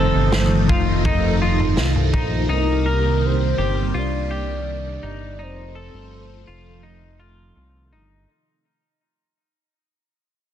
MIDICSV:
0, 0, Header, 1, 6, 480
1, 0, Start_track
1, 0, Tempo, 722892
1, 1659, Time_signature, 4, 2, 24, 8
1, 6995, End_track
2, 0, Start_track
2, 0, Title_t, "Soft synth lead"
2, 0, Program_c, 0, 80
2, 0, Note_on_c, 0, 72, 98
2, 716, Note_off_c, 0, 72, 0
2, 1678, Note_on_c, 0, 70, 100
2, 2163, Note_on_c, 0, 72, 106
2, 2173, Note_off_c, 0, 70, 0
2, 2642, Note_on_c, 0, 74, 114
2, 2652, Note_off_c, 0, 72, 0
2, 3604, Note_on_c, 0, 72, 100
2, 3614, Note_off_c, 0, 74, 0
2, 5032, Note_off_c, 0, 72, 0
2, 6995, End_track
3, 0, Start_track
3, 0, Title_t, "Clean electric guitar"
3, 0, Program_c, 1, 27
3, 0, Note_on_c, 1, 69, 74
3, 460, Note_off_c, 1, 69, 0
3, 461, Note_on_c, 1, 65, 69
3, 700, Note_off_c, 1, 65, 0
3, 703, Note_on_c, 1, 63, 87
3, 938, Note_off_c, 1, 63, 0
3, 941, Note_on_c, 1, 65, 67
3, 1415, Note_off_c, 1, 65, 0
3, 1418, Note_on_c, 1, 63, 69
3, 1648, Note_off_c, 1, 63, 0
3, 1656, Note_on_c, 1, 63, 85
3, 1898, Note_off_c, 1, 63, 0
3, 1898, Note_on_c, 1, 70, 72
3, 2377, Note_off_c, 1, 70, 0
3, 2379, Note_on_c, 1, 67, 67
3, 2619, Note_on_c, 1, 65, 82
3, 2620, Note_off_c, 1, 67, 0
3, 2859, Note_off_c, 1, 65, 0
3, 2860, Note_on_c, 1, 67, 62
3, 3340, Note_off_c, 1, 67, 0
3, 3340, Note_on_c, 1, 63, 65
3, 3570, Note_off_c, 1, 63, 0
3, 3578, Note_on_c, 1, 63, 81
3, 3819, Note_off_c, 1, 63, 0
3, 3820, Note_on_c, 1, 69, 70
3, 4296, Note_off_c, 1, 69, 0
3, 4299, Note_on_c, 1, 65, 63
3, 4536, Note_on_c, 1, 63, 75
3, 4539, Note_off_c, 1, 65, 0
3, 4777, Note_on_c, 1, 65, 62
3, 4778, Note_off_c, 1, 63, 0
3, 5259, Note_off_c, 1, 65, 0
3, 5263, Note_on_c, 1, 63, 61
3, 5501, Note_off_c, 1, 63, 0
3, 6995, End_track
4, 0, Start_track
4, 0, Title_t, "String machine"
4, 0, Program_c, 2, 50
4, 0, Note_on_c, 2, 48, 81
4, 0, Note_on_c, 2, 51, 70
4, 0, Note_on_c, 2, 53, 74
4, 0, Note_on_c, 2, 57, 71
4, 0, Note_on_c, 2, 63, 89
4, 1641, Note_off_c, 2, 53, 0
4, 1642, Note_off_c, 2, 57, 0
4, 1661, Note_on_c, 2, 58, 77
4, 1663, Note_on_c, 2, 55, 75
4, 3561, Note_off_c, 2, 58, 0
4, 3562, Note_off_c, 2, 55, 0
4, 3574, Note_on_c, 2, 53, 72
4, 3575, Note_on_c, 2, 57, 69
4, 5470, Note_off_c, 2, 48, 0
4, 5470, Note_off_c, 2, 51, 0
4, 5471, Note_off_c, 2, 63, 0
4, 5478, Note_off_c, 2, 53, 0
4, 5478, Note_off_c, 2, 57, 0
4, 6995, End_track
5, 0, Start_track
5, 0, Title_t, "Analog synth bass"
5, 0, Program_c, 3, 38
5, 0, Note_on_c, 3, 29, 98
5, 82, Note_off_c, 3, 29, 0
5, 102, Note_on_c, 3, 31, 71
5, 461, Note_on_c, 3, 29, 85
5, 471, Note_off_c, 3, 31, 0
5, 1181, Note_on_c, 3, 36, 93
5, 1191, Note_off_c, 3, 29, 0
5, 1409, Note_off_c, 3, 36, 0
5, 1419, Note_on_c, 3, 34, 84
5, 1647, Note_off_c, 3, 34, 0
5, 1654, Note_on_c, 3, 36, 93
5, 2350, Note_off_c, 3, 36, 0
5, 2380, Note_on_c, 3, 31, 74
5, 2608, Note_off_c, 3, 31, 0
5, 2618, Note_on_c, 3, 36, 84
5, 3312, Note_off_c, 3, 36, 0
5, 3342, Note_on_c, 3, 31, 84
5, 3578, Note_on_c, 3, 29, 98
5, 3588, Note_off_c, 3, 31, 0
5, 3921, Note_off_c, 3, 29, 0
5, 3945, Note_on_c, 3, 31, 79
5, 4284, Note_off_c, 3, 31, 0
5, 4303, Note_on_c, 3, 29, 88
5, 4995, Note_off_c, 3, 29, 0
5, 5022, Note_on_c, 3, 36, 78
5, 5261, Note_on_c, 3, 31, 78
5, 5271, Note_off_c, 3, 36, 0
5, 5488, Note_off_c, 3, 31, 0
5, 6995, End_track
6, 0, Start_track
6, 0, Title_t, "Drums"
6, 215, Note_on_c, 9, 38, 101
6, 282, Note_off_c, 9, 38, 0
6, 461, Note_on_c, 9, 36, 81
6, 527, Note_off_c, 9, 36, 0
6, 696, Note_on_c, 9, 43, 58
6, 697, Note_on_c, 9, 36, 81
6, 762, Note_off_c, 9, 43, 0
6, 764, Note_off_c, 9, 36, 0
6, 1060, Note_on_c, 9, 43, 58
6, 1127, Note_off_c, 9, 43, 0
6, 1176, Note_on_c, 9, 38, 101
6, 1242, Note_off_c, 9, 38, 0
6, 1299, Note_on_c, 9, 43, 49
6, 1366, Note_off_c, 9, 43, 0
6, 1418, Note_on_c, 9, 43, 57
6, 1419, Note_on_c, 9, 36, 93
6, 1485, Note_off_c, 9, 43, 0
6, 1486, Note_off_c, 9, 36, 0
6, 6995, End_track
0, 0, End_of_file